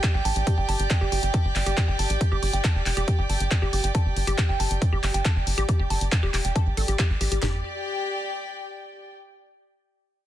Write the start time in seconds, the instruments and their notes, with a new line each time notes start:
Already playing: string section G4 D5 G5
0.03 synth arpeggio sound G4, kick, clap, closed hi-hat
0.14 analog synth bass A1, synth arpeggio sound G5
0.25 analog synth bass A1, synth arpeggio sound A5, open hi-hat
0.36 analog synth bass A1, closed hi-hat
0.47 synth arpeggio sound G4, kick, closed hi-hat
0.58 analog synth bass G1, synth arpeggio sound G5
0.69 analog synth bass G1, synth arpeggio sound A5, open hi-hat
0.80 analog synth bass G1, closed hi-hat
0.90 kick, clap, closed hi-hat
1.01 analog synth bass G1, synth arpeggio sound G4
1.12 analog synth bass G1, synth arpeggio sound G4, open hi-hat
1.23 analog synth bass G1, synth arpeggio sound G5, closed hi-hat
1.34 synth arpeggio sound A5, kick, closed hi-hat
1.45 analog synth bass G1
1.56 analog synth bass G1, clap, open hi-hat
1.66 analog synth bass G1, synth arpeggio sound G4, closed hi-hat
1.77 synth arpeggio sound G4, kick, clap, closed hi-hat
1.88 analog synth bass G1, synth arpeggio sound G5
1.99 analog synth bass G1, synth arpeggio sound A5, open hi-hat
2.10 analog synth bass A1, closed hi-hat
2.21 kick, closed hi-hat
2.32 analog synth bass G1, synth arpeggio sound G4
2.43 analog synth bass G1, synth arpeggio sound G4, open hi-hat
2.53 analog synth bass G1, synth arpeggio sound G5, closed hi-hat
2.64 synth arpeggio sound A5, kick, clap, closed hi-hat
2.75 analog synth bass F1
2.86 analog synth bass F1, clap, open hi-hat
2.97 analog synth bass F1, synth arpeggio sound G4, closed hi-hat
3.08 synth arpeggio sound G4, kick, closed hi-hat
3.19 analog synth bass G1, synth arpeggio sound G5
3.30 analog synth bass G1, synth arpeggio sound A5, open hi-hat
3.40 analog synth bass G1, closed hi-hat
3.51 kick, clap, closed hi-hat
3.62 analog synth bass G1, synth arpeggio sound G4
3.73 analog synth bass G1, synth arpeggio sound G4, open hi-hat
3.84 analog synth bass G1, synth arpeggio sound G5, closed hi-hat
3.95 synth arpeggio sound A5, kick, closed hi-hat
4.06 analog synth bass G1
4.16 analog synth bass G1, open hi-hat
4.27 analog synth bass G1, synth arpeggio sound G4, closed hi-hat
4.38 synth arpeggio sound G4, kick, clap, closed hi-hat
4.49 analog synth bass G1, synth arpeggio sound G5
4.60 analog synth bass G1, synth arpeggio sound A5, open hi-hat
4.71 analog synth bass G1, closed hi-hat
4.82 kick, closed hi-hat
4.92 analog synth bass G1, synth arpeggio sound G4
5.03 analog synth bass G1, synth arpeggio sound G4, clap, open hi-hat
5.14 analog synth bass G1, synth arpeggio sound G5, closed hi-hat
5.25 synth arpeggio sound A5, kick, clap, closed hi-hat
5.36 analog synth bass G1
5.47 analog synth bass G1, open hi-hat
5.58 analog synth bass A1, synth arpeggio sound G4, closed hi-hat
5.69 synth arpeggio sound G4, kick, closed hi-hat
5.79 analog synth bass G1, synth arpeggio sound G5
5.90 analog synth bass G1, synth arpeggio sound A5, open hi-hat
6.01 analog synth bass G1, closed hi-hat
6.12 kick, clap, closed hi-hat
6.23 analog synth bass F1, synth arpeggio sound G4
6.34 analog synth bass F1, synth arpeggio sound G4, clap, open hi-hat
6.45 analog synth bass F1, synth arpeggio sound G5, closed hi-hat
6.56 synth arpeggio sound A5, kick, closed hi-hat
6.66 analog synth bass A1
6.77 analog synth bass A1, synth arpeggio sound A4, open hi-hat
6.88 analog synth bass A1, synth arpeggio sound G4, closed hi-hat
6.99 synth arpeggio sound G4, kick, clap, closed hi-hat
7.10 analog synth bass A1
7.21 analog synth bass A1, synth arpeggio sound G4, open hi-hat
7.32 analog synth bass A1, synth arpeggio sound G4, closed hi-hat
7.43 analog synth bass G1, string section G4, synth arpeggio sound G4, snare, clap, floor tom
7.49 string section D5
7.56 string section G5